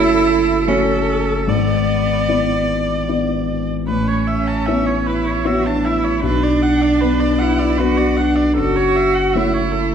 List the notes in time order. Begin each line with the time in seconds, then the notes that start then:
Already playing: F#1 F#2 A3 E4 F#4 A4 C#5
0.67 A3 C#4 F#4 A4 C#5
1.47 G#1 G#2 B3 D5
2.28 B3 E4 D5
3.08 B3 E4 D5
3.87 A1 A2 C#4 B4
4.07 C#5
4.27 E5
4.47 A5
4.66 B3 E4 C#5 E5
4.86 C#5
5.07 E4 B4
5.26 C#5
5.45 B3 E4 F#4 C#5 E5
5.66 D4 A5
5.85 E4 E5
6.04 C#5
6.23 B1 D4 B4
6.43 D5
6.62 F#5
6.81 D5
7.00 B3 D4 B4
7.20 D5
7.39 E4 F#5
7.59 D5
7.78 B3 D4 F#4 B4
7.97 D5
8.17 D4 F#5
8.36 D5
8.56 F#1 F#2 F#4 A4
8.76 C#5
8.96 E5
9.14 F#5
9.33 A3 E4 C#5 E5
9.37 E4
9.54 C#5
9.72 A4